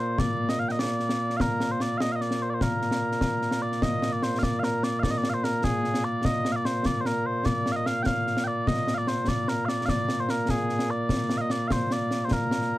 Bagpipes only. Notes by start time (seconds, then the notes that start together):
Already playing: A#2 A#3
0.00 C5
0.19 D5
0.49 D#5
0.60 F5
0.68 D#5 G5
0.79 D5
1.37 A#4 F5
1.71 C5
1.82 D5
1.98 D#5 F5
2.12 D#5 F5
2.21 D5
2.42 C5
2.50 D5
2.54 C5
2.62 A#4
3.62 D5
3.82 D#5
4.12 D5
4.23 C5
4.39 F5
4.43 D5
4.59 F5
4.64 A#4
4.84 D5
4.99 D5 F5
5.11 D#5
5.17 D5
5.30 F5
5.34 C5
5.44 A#4
5.64 G#4
6.04 D5
6.25 D#5
6.52 D5 F5
6.65 C5
6.86 D5
7.01 C5
7.06 A#4
7.26 C5
7.45 D5
7.72 F5
7.76 D#5
7.86 F5
8.03 F5 G5
8.44 D5 G5
8.67 D#5
8.95 D5 F5
9.08 C5
9.28 D5
9.49 A#4
9.65 D5 F5
9.86 D5 F5
10.20 C5
10.30 A#4
10.51 G#4
10.91 D5
11.38 D#5 F5
11.51 D5
11.68 F5
11.72 C5
11.92 D5
12.25 C5
12.33 A#4